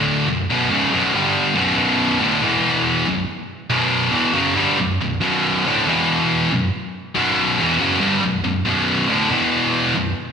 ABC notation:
X:1
M:4/4
L:1/8
Q:1/4=139
K:Bm
V:1 name="Distorted electric guitar" clef=bass
[D,,A,,D,] [B,,,F,,] [B,,,F,,B,,] [C,,^G,,C,] [B,,,F,,B,,] [=G,,D,G,]2 [B,,,F,,B,,] | [B,,,F,,B,,]2 [D,,A,,D,] [E,,B,,E,]3 [B,,,F,,] z | z [B,,,F,,B,,]2 [E,,B,,E,] [F,,C,F,] [G,,D,G,] [B,,,F,,] [B,,,F,,] | [B,,,F,,B,,]2 [D,,A,,D,] [E,,B,,E,]3 [B,,,F,,] z |
z [B,,,F,,B,,]2 [E,,B,,E,] [F,,C,F,] [G,,D,G,] [B,,,F,,] [B,,,F,,] | [B,,,F,,B,,]2 [D,,A,,D,] [E,,B,,E,]3 [B,,,F,,] z |]